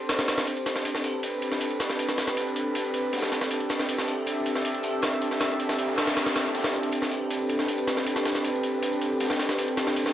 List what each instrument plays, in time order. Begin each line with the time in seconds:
Already playing: analog synth pad C4 D4 G4 A4 C5
0.09 snare, closed hi-hat, ride
0.19 snare, ride
0.28 snare, closed hi-hat, ride
0.38 snare, ride
0.47 closed hi-hat, ride
0.57 ride
0.66 snare, closed hi-hat, ride
0.76 snare
0.85 analog synth pad B4, closed hi-hat, ride
0.95 snare
1.04 closed hi-hat, open hi-hat
1.23 closed hi-hat, ride
1.42 closed hi-hat, ride
1.52 snare
1.60 closed hi-hat, ride
1.71 ride
1.80 snare, closed hi-hat, ride
1.90 snare
1.99 closed hi-hat, ride
2.09 snare
2.17 snare, closed hi-hat, ride
2.27 snare
2.37 closed hi-hat, ride
2.46 closed hi-hat
2.56 closed hi-hat, ride
2.75 closed hi-hat, ride
2.85 closed hi-hat
2.94 closed hi-hat, ride
3.13 snare, closed hi-hat, ride
3.17 snare, closed hi-hat
3.21 snare, closed hi-hat
3.32 snare, closed hi-hat, ride
3.41 snare, closed hi-hat
3.51 closed hi-hat, ride
3.60 ride
3.69 snare, closed hi-hat, ride
3.79 snare
3.89 analog synth pad E5, closed hi-hat, ride
3.98 snare
4.08 closed hi-hat, open hi-hat
4.26 closed hi-hat, ride
4.46 closed hi-hat, ride
4.55 snare
4.65 closed hi-hat, ride
4.74 ride
4.83 closed hi-hat, open hi-hat
5.02 snare, closed hi-hat, ride
5.21 closed hi-hat, ride
5.31 snare
5.40 snare, closed hi-hat, ride, noise sweep
5.50 closed hi-hat
5.60 closed hi-hat, ride
5.69 snare, ride
5.78 closed hi-hat, ride
5.88 closed hi-hat
5.98 snare, closed hi-hat, ride
6.07 snare, ride
6.17 snare, closed hi-hat, ride
6.26 snare, ride
6.36 snare, closed hi-hat, ride
6.46 closed hi-hat
6.54 snare, closed hi-hat, ride
6.59 snare, closed hi-hat
6.64 snare, ride
6.73 closed hi-hat
6.83 ride
6.92 analog synth pad B4, closed hi-hat, ride
7.02 snare
7.11 closed hi-hat, open hi-hat
7.30 closed hi-hat, ride
7.49 closed hi-hat, ride
7.59 snare
7.68 closed hi-hat, ride
7.78 ride
7.87 snare, closed hi-hat, ride
7.97 snare
8.06 closed hi-hat, ride
8.16 snare
8.25 snare, closed hi-hat, ride
8.35 snare
8.44 closed hi-hat, ride
8.55 closed hi-hat
8.63 closed hi-hat, ride
8.82 closed hi-hat, ride
8.92 closed hi-hat
9.01 closed hi-hat, ride
9.20 snare, closed hi-hat, ride
9.25 snare, closed hi-hat
9.30 snare, closed hi-hat
9.39 snare, closed hi-hat, ride
9.49 snare, closed hi-hat
9.58 closed hi-hat, ride
9.68 ride
9.77 snare, closed hi-hat, ride
9.87 snare
9.96 analog synth pad C5, closed hi-hat, ride
10.06 snare